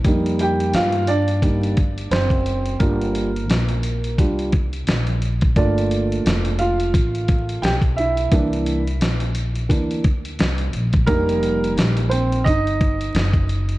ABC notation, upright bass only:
X:1
M:4/4
L:1/8
Q:"Swing 16ths" 1/4=87
K:Gm
V:1 name="Upright bass" clef=bass
F,,2 G,,2 G,,,2 ^F,,,2 | G,,,2 B,,,2 C,,2 B,,,2 | G,,,2 F,,,2 A,,,2 =B,,,2 | C,,2 B,,,2 D,,2 C,, B,,, |
F,,,2 B,,,2 G,,,2 ^F,,,2 |]